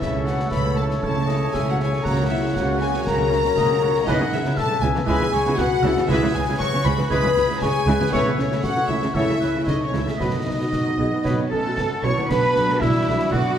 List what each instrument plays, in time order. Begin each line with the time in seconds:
Already playing: oboe A4, harp E5
0.00 double bass section C#2, cello section C#3, harp C#3, trombone section E3 A3, viola section C#4 E4, french horn section E4, trumpet section C#5, violin section E5, flute section E5, concert bass drum, snare
0.14 viola section A3 C#4, harp C#4
0.25 viola section C#4 E4, french horn section F#4, harp A4, flute section F#5, violin section F#5, snare
0.39 viola section A3 C#4, harp C#5, snare
0.50 double bass section C#2, cello section C#3, viola section C#4 E4, french horn section B4, harp E5, flute section B5, violin section B5, concert bass drum, snare
0.65 viola section A3 C#4, harp A5
0.74 french horn section A4, harp E5, flute section A5, violin section A5
0.80 viola section C#4 E4
0.90 viola section A3 C#4, snare
1.00 double bass section C#2, harp C#3, cello section C#3, french horn section A4, oboe C#5, violin section A5, flute section A5, concert bass drum
1.05 viola section C#4 E4
1.16 viola section A3 C#4, harp C#4
1.27 viola section C#4 E4, harp A4, oboe D#5, snare
1.41 viola section A3 C#4, harp C#5
1.52 double bass section C#2, cello section C#3, viola section C#4 E4, french horn section G#4, oboe E5, harp E5, flute section G#5, violin section G#5, concert bass drum, snare
1.66 viola section A3 C#4, french horn section F#4, violin section F#5, flute section F#5, harp A5
1.79 viola section C#4 E4, harp E5, snare
1.84 french horn section G#4, violin section G#5, flute section G#5
1.91 viola section A3 C#4, harp C#5, snare
2.02 double bass section C#2, cello section C#3, harp C#3, trombone section C#3 F#3, viola section A#3 F#4, french horn section A#4, oboe F#5, violin section A#5, flute section A#5, concert bass drum, snare
2.17 harp C#4, viola section C#4 A#4
2.27 french horn section E4, harp F#4, violin section E5, flute section E5
2.31 viola section A#3 F#4
2.43 viola section C#4 A#4, harp C#5
2.53 double bass section C#2, cello section C#3, viola section A#3 F#4, french horn section F#4, violin section F#5, flute section F#5, harp F#5, concert bass drum, snare
2.68 viola section C#4 A#4, harp C#5
2.79 viola section A#3 F#4, french horn section G#4, harp F#5, violin section G#5, flute section G#5, snare
2.94 viola section C#4 A#4, harp C#5, snare
3.05 double bass section C#2, cello section C#3, viola section A#3 F#4, harp A#3, french horn section A#4, violin section A#5, flute section A#5, concert bass drum, snare
3.18 viola section C#4 A#4, harp C#4
3.31 viola section A#3 F#4, harp F#4, snare
3.44 viola section C#4 A#4, harp C#5, snare
3.56 double bass section C#2, cello section C#3, viola section A#3 F#4, oboe D#5, harp F#5, concert bass drum, snare
3.70 viola section C#4 A#4, harp C#5
3.83 viola section A#3 F#4, oboe C#5, harp F#5
3.94 viola section C#4 A#4, harp C#5, snare
4.06 double bass section C#2, cello section C#3, harp C#3, trombone section E3 G#3, viola section B3 E4, french horn section D#4, trumpet section B4, violin section D#5, flute section D#5, oboe F#5, concert bass drum, snare, crash
4.20 cello section C#3, viola section E3 B3, harp B3
4.32 double bass section C#2, cello section C#3, viola section G#3 C#4, french horn section E4, harp G#4, flute section E5, violin section E5, snare
4.45 cello section C#3, viola section B3 E4, harp B4, snare
4.57 french horn section A4, oboe E5, harp E5, violin section A5, flute section A5, concert bass drum, snare
4.71 cello section C#3, viola section G#3 C#4, harp G#5
4.80 double bass section C#2, cello section C#3, viola section B3 E4, french horn section G#4, harp E5, violin section G#5, flute section G#5
4.95 cello section C#3, viola section E3 B3, harp B4, snare
5.06 double bass section C#2, cello section C#3, trombone section E3 G#3, harp G#3, viola section B3 E4, french horn section G#4, trumpet section B4, oboe E5, violin section G#5, flute section G#5, concert bass drum
5.21 cello section C#3, viola section E3 B3, harp B3
5.32 double bass section C#2, cello section C#3, viola section G#3 C#4, harp G#4, oboe C#5, snare
5.46 cello section C#3, viola section B3 E4, harp B4
5.56 double bass section C#2, cello section C#3, viola section E3 B3, french horn section F#4, oboe B4, violin section F#5, flute section F#5, concert bass drum, snare
5.60 harp E5
5.73 harp G#5
5.83 double bass section C#2, cello section C#3, viola section B3 E4, oboe A4, harp E5, snare
5.96 cello section C#3, viola section E3 B3, harp B4, snare
6.07 double bass section C#2, harp C#3, cello section C#3, trombone section E3 G#3, viola section G#3 E4, french horn section E4, oboe G#4, trumpet section B4, violin section E5, flute section E5, concert bass drum, snare
6.22 cello section C#3, viola section E3 G#3, harp B3
6.33 double bass section C#2, viola section E3 B3, french horn section G#4, harp G#4, violin section G#5, flute section G#5
6.37 cello section C#3
6.48 cello section C#3, viola section G#3 E4, harp B4
6.58 oboe F#4, french horn section C#5, harp E5, violin section C#6, flute section C#6, concert bass drum, snare
6.74 cello section C#3, viola section E3 B3, harp G#5
6.84 double bass section C#2, cello section C#3, viola section G#3 E4, french horn section B4, harp E5, flute section B5, violin section B5, snare
6.97 cello section C#3, viola section E3 G#3, harp B4, snare
7.08 double bass section C#2, harp C#3, cello section C#3, trombone section E3 G#3, viola section G#3 E4, oboe G#4, french horn section B4, trumpet section B4, violin section B5, flute section B5, concert bass drum, snare
7.23 cello section C#3, viola section E3 G#3, harp B3
7.36 double bass section C#2, cello section C#3, viola section E3 B3, harp G#4, snare
7.48 cello section C#3, viola section G#3 E4, harp B4, snare
7.60 double bass section C#2, cello section C#3, viola section E3 G#3, french horn section G#4, oboe C#5, harp E5, violin section G#5, flute section G#5, concert bass drum, snare
7.75 harp G#5
7.86 double bass section C#2, cello section C#3, viola section G#3 E4, oboe B4, harp E5
8.00 cello section C#3, viola section E3 G#3, harp B4, snare
8.10 double bass section C#2, cello section C#3, harp C#3, trombone section E3 A3, viola section A3 E4, french horn section B3, violin section B4, flute section B4, trumpet section C#5, oboe E5, concert bass drum, snare
8.26 cello section C#3, viola section C#3 A3, harp A3
8.37 double bass section C#2, cello section C#3, viola section E3 C#4, french horn section C#4, harp A4, violin section C#5, flute section C#5, snare
8.50 cello section C#3, viola section A3 E4, harp E4, snare
8.63 french horn section F#4, oboe C#5, harp E5, violin section F#5, flute section F#5, concert bass drum, snare
8.76 cello section C#3, viola section E3 C#4, harp A5
8.87 double bass section C#2, cello section C#3, viola section A3 E4, french horn section E4, violin section E5, flute section E5, harp E5
9.02 viola section C#3 A3, cello section C#3, harp A4, snare
9.14 double bass section C#2, harp C#3, cello section C#3, trombone section E3 A3, french horn section E4, oboe A4, trumpet section C#5, violin section E5, flute section E5, concert bass drum
9.18 viola section A3 E4
9.28 cello section C#3, viola section C#3 A3, harp A3
9.40 double bass section C#2, cello section C#3, viola section E3 C#4, harp A4, oboe B4, snare
9.54 cello section C#3, viola section A3 E4, harp E4
9.66 double bass section C#2, cello section C#3, french horn section D#4, oboe C#5, violin section D#5, flute section D#5, harp E5, concert bass drum, snare
9.70 viola section C#3 A3
9.81 violin section C#5, harp A5
9.86 french horn section C#4, flute section C#5
9.93 double bass section C#2, cello section C#3, viola section A3 E4, harp E5, snare
9.99 violin section E5
10.03 cello section C#3, french horn section E4, harp A4, flute section E5
10.08 viola section C#3 A3, snare
10.17 double bass section B1, cello section B2, harp B2, trombone section F#3 B3, viola section F#3 F#4, trumpet section B4, oboe D#5, violin section D#5, concert bass drum, snare
10.22 french horn section D#4, flute section D#5
10.32 cello section B2, viola section D#3 B3
10.45 double bass section B1, cello section B2, viola section D#3 D#4, harp B4
10.59 cello section B2, viola section F#3 F#4, harp F#4
10.72 clarinet F#4, harp F#5, concert bass drum, snare
10.85 cello section B2, viola section D#3 D#4, harp B5
10.98 double bass section B1, cello section B2, viola section F#3 F#4, clarinet G#4, harp F#5
11.12 cello section B2, viola section D#3 B3, harp F#4
11.23 double bass section B1, cello section B2, trombone section F#3 B3, viola section F#3 F#4, harp B3, trumpet section B4, clarinet C#5, concert bass drum, snare
11.38 cello section B2, viola section D#3 B3
11.48 double bass section B1, cello section B2 A4, french horn section A3, clarinet C#4, trumpet section A4, harp B4, violin section A5, oboe A5
11.53 viola section D#3 D#4
11.64 cello section B2, viola section F#3 F#4, harp F#4
11.76 double bass section B1, cello section B2, viola section D#3 B3, harp F#5, concert bass drum, snare
11.91 harp B5
12.02 double bass section B1, cello section B2 C#5, viola section F#3 F#4, french horn section C#4, clarinet E4, trumpet section C#5, harp F#5, violin section C#6, oboe C#6
12.12 harp B2
12.16 cello section B2, harp D3 F#4, viola section D#3 B3
12.21 harp D4
12.25 trombone section D4 F#4, harp B4, trumpet section B4, cello section B4, violin section B5
12.30 double bass section B1, viola section D3 B3, french horn section B3, clarinet D4, oboe B5, concert bass drum, snare, crash
12.55 double bass section B1, viola section D3 B3, snare
12.69 snare
12.80 double bass section B1, viola section D3 B3, french horn section E3, clarinet G3, trumpet section E4, cello section E4, violin section E5, oboe E5, concert bass drum, snare
13.07 double bass section B1, viola section D3 B3
13.31 double bass section B1, viola section D3 B3, french horn section F#3, clarinet B3, trumpet section F#4, cello section F#4, violin section D5 F#5, oboe F#5, concert bass drum